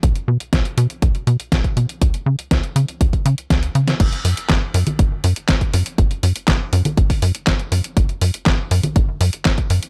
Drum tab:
CC |----------------|----------------|x---------------|----------------|
HH |xx-xxxxxxxxxxxxx|xx-xxxxxxxxxxxxx|xxoxx-oxx-oxxxox|xxoxx-oxxooxxxox|
CP |----------------|----------------|----x-------x---|----x-------x---|
SD |----o-------o---|----o-------o--o|----o-------o---|----o-------o---|
CG |----------------|----------------|-------o--------|-------o--------|
BD |o---o---o---oo--|o---o---oo--o---|o---o---o---oo--|o---o---oo--o---|

CC |----------------|
HH |xxoxx-oxx-oxxxox|
CP |----x-------x---|
SD |----o-------o---|
CG |-------o--------|
BD |o---o---o---oo--|